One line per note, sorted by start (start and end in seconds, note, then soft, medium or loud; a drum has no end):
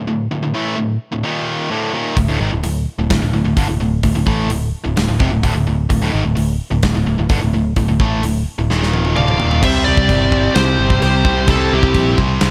0.07 0.26 D2 medium
0.07 0.26 A2 medium
0.31 0.41 D2 medium
0.31 0.42 A2 medium
0.43 0.54 D2 medium
0.43 0.53 A2 medium
0.54 0.76 A2 medium
0.54 0.77 E3 medium
0.54 0.78 A3 medium
0.77 0.96 D2 medium
0.77 0.96 A2 medium
1.12 1.23 D2 medium
1.12 1.23 A2 medium
1.23 1.70 D#2 medium
1.23 1.70 A#2 medium
1.23 1.70 D#3 medium
1.71 1.93 D2 medium
1.71 1.93 A2 medium
1.71 1.94 D3 medium
1.93 2.16 D#2 medium
1.93 2.17 A#2 loud
1.93 2.17 D#3 medium
2.17 2.28 D1 medium
2.17 2.27 D2 medium
2.17 2.28 A2 medium
2.17 kick medium
2.17 open hi-hat soft
2.28 2.40 D1 medium
2.28 2.40 D2 medium
2.28 2.40 A2 medium
2.40 2.52 G#1 medium
2.40 2.51 G#2 medium
2.40 2.52 D#3 medium
2.52 2.63 D1 medium
2.52 2.62 D2 medium
2.52 2.63 A2 medium
2.63 2.86 D1 medium
2.63 2.82 D2 medium
2.63 2.83 A2 medium
2.63 open hi-hat medium
2.99 3.10 D1 medium
2.99 3.09 D2 medium
2.99 3.10 A2 medium
3.10 3.21 D1 medium
3.10 3.20 D2 medium
3.10 3.21 A2 medium
3.10 kick loud
3.10 snare loud
3.10 open hi-hat medium
3.22 3.33 D1 medium
3.22 3.32 D2 medium
3.22 3.32 A2 medium
3.33 3.45 D1 medium
3.33 3.43 D2 medium
3.33 3.44 A2 medium
3.45 3.56 D1 medium
3.45 3.57 D2 medium
3.45 3.57 A2 medium
3.57 3.68 G1 medium
3.57 3.68 G2 medium
3.57 3.68 D3 medium
3.57 kick loud
3.57 open hi-hat medium
3.68 3.80 D1 medium
3.68 3.79 D2 medium
3.68 3.79 A2 medium
3.80 4.02 D1 medium
3.80 3.99 D2 medium
3.80 3.99 A2 medium
4.03 4.14 D1 medium
4.03 4.14 D2 medium
4.03 4.14 A2 medium
4.03 kick medium
4.03 open hi-hat medium
4.15 4.26 D1 medium
4.15 4.26 D2 medium
4.15 4.25 A2 medium
4.26 4.49 A1 loud
4.26 4.49 A2 medium
4.26 4.49 E3 medium
4.26 4.50 A3 medium
4.26 kick medium
4.50 4.72 D1 medium
4.50 4.69 D2 medium
4.50 4.69 A2 medium
4.50 open hi-hat medium
4.84 4.96 D1 medium
4.84 4.95 D2 medium
4.84 4.96 A2 medium
4.96 5.08 D1 medium
4.96 5.07 D2 medium
4.96 5.08 A2 medium
4.96 snare loud
4.96 open hi-hat medium
5.08 5.20 D1 medium
5.08 5.19 D2 medium
5.08 5.20 A2 medium
5.19 5.31 F1 medium
5.19 5.31 F2 medium
5.19 5.31 C3 loud
5.19 kick loud
5.31 5.43 D1 medium
5.31 5.42 D2 medium
5.31 5.43 A2 medium
5.43 5.54 D1 medium
5.43 5.54 D2 loud
5.43 5.54 A2 loud
5.43 kick medium
5.43 open hi-hat medium
5.55 5.66 D1 medium
5.55 5.66 D2 medium
5.55 5.66 A2 medium
5.67 5.89 D1 medium
5.67 5.85 D2 medium
5.67 5.86 A2 medium
5.89 6.01 D1 medium
5.89 6.00 D2 medium
5.89 6.01 A2 medium
5.89 kick medium
5.89 open hi-hat medium
6.02 6.13 D1 medium
6.02 6.12 D2 medium
6.02 6.13 A2 loud
6.12 6.24 G#1 medium
6.12 6.24 G#2 medium
6.12 6.24 D#3 medium
6.24 6.36 D1 medium
6.24 6.34 D2 medium
6.24 6.34 A2 medium
6.35 6.58 D1 medium
6.35 6.55 D2 medium
6.35 6.55 A2 medium
6.35 open hi-hat medium
6.71 6.82 D1 medium
6.71 6.82 D2 medium
6.71 6.82 A2 medium
6.83 6.94 D1 medium
6.83 6.93 D2 medium
6.83 6.94 A2 medium
6.83 kick medium
6.83 snare loud
6.83 open hi-hat medium
6.95 7.06 D1 medium
6.95 7.05 D2 medium
6.95 7.06 A2 medium
7.07 7.18 D1 medium
7.07 7.18 D2 medium
7.07 7.18 A2 medium
7.19 7.29 D1 medium
7.19 7.30 D2 medium
7.19 7.30 A2 medium
7.29 7.41 G1 medium
7.29 7.41 G2 medium
7.29 7.41 D3 loud
7.29 kick loud
7.29 open hi-hat medium
7.42 7.53 D1 medium
7.42 7.52 D2 medium
7.42 7.53 A2 medium
7.54 7.76 D1 medium
7.54 7.72 D2 medium
7.54 7.72 A2 medium
7.76 7.87 D1 medium
7.76 7.87 D2 medium
7.76 7.88 A2 medium
7.76 kick medium
7.76 open hi-hat soft
7.88 8.00 D1 medium
7.88 8.00 D2 medium
7.88 7.99 A2 medium
8.00 8.22 A1 loud
8.00 8.23 A2 medium
8.00 8.23 E3 medium
8.00 8.23 A3 loud
8.00 kick loud
8.23 8.45 D1 medium
8.23 8.42 D2 medium
8.23 8.42 A2 medium
8.23 open hi-hat medium
8.58 8.69 D1 medium
8.58 8.70 D2 medium
8.58 8.70 A2 medium
8.70 9.14 D#1 medium
8.70 9.16 D#2 medium
8.70 9.16 A#2 medium
8.70 9.16 D#3 loud
8.70 snare medium
8.83 snare medium
8.93 high tom medium
9.05 high tom medium
9.16 9.39 D1 medium
9.16 9.39 D2 medium
9.16 9.39 A2 medium
9.16 9.39 D3 loud
9.16 9.60 D5 medium
9.16 9.63 F5 loud
9.16 mid tom medium
9.28 mid tom medium
9.40 9.62 D#1 medium
9.40 9.62 D#2 medium
9.40 9.62 A#2 loud
9.40 9.63 D#3 loud
9.40 floor tom medium
9.51 floor tom medium
9.61 9.82 C2 loud
9.61 10.34 C3 loud
9.61 10.77 C3 medium
9.61 10.33 G3 loud
9.61 10.78 G3 medium
9.61 10.33 C4 loud
9.61 10.76 C4 loud
9.61 10.32 E4 loud
9.61 10.31 G4 loud
9.61 9.84 C5 loud
9.61 10.30 C5 loud
9.61 9.84 E5 loud
9.61 kick loud
9.61 crash loud
9.61 crash medium
9.85 10.06 C2 loud
9.85 10.52 G4 medium
9.85 10.57 D5 medium
9.97 kick medium
10.09 10.48 G1 medium
10.09 kick medium
10.09 crash medium
10.31 11.45 C3 medium
10.31 11.47 G3 medium
10.31 11.47 C4 medium
10.31 11.47 E4 medium
10.31 11.47 G4 medium
10.31 11.46 C5 medium
10.31 kick medium
10.55 10.75 C2 medium
10.55 10.99 G4 medium
10.55 11.02 C5 loud
10.55 snare loud
10.55 crash medium
10.78 10.98 G1 medium
10.78 11.00 C3 medium
10.78 11.01 G3 medium
10.78 11.00 C4 medium
10.90 kick medium
11.01 11.22 C2 medium
11.01 11.47 C3 medium
11.01 11.47 G3 medium
11.01 11.48 C4 medium
11.01 11.46 G4 medium
11.01 11.50 C5 loud
11.01 crash medium
11.24 11.45 C2 medium
11.24 11.46 C3 medium
11.24 11.48 G3 medium
11.24 11.47 C4 medium
11.24 kick medium
11.47 11.68 C2 medium
11.47 12.16 C3 loud
11.47 12.51 C3 medium
11.47 12.16 G3 loud
11.47 12.51 G3 loud
11.47 12.17 C4 loud
11.47 12.17 E4 loud
11.47 11.71 E4 medium
11.47 12.17 G4 loud
11.47 11.73 A4 loud
11.47 kick loud
11.47 crash medium
11.51 12.51 C4 medium
11.51 12.16 C5 loud
11.73 11.92 C2 loud
11.73 12.16 E4 medium
11.73 12.16 G4 medium
11.83 kick medium
11.94 12.14 A#1 loud
11.94 kick medium
11.94 crash medium
12.17 12.38 C2 loud
12.17 12.51 G3 medium
12.17 12.51 C4 medium
12.17 12.51 E4 medium
12.17 12.51 G4 medium
12.17 12.51 C5 medium
12.17 kick medium
12.21 12.51 C3 medium
12.41 12.51 C2 loud
12.41 snare loud
12.41 crash medium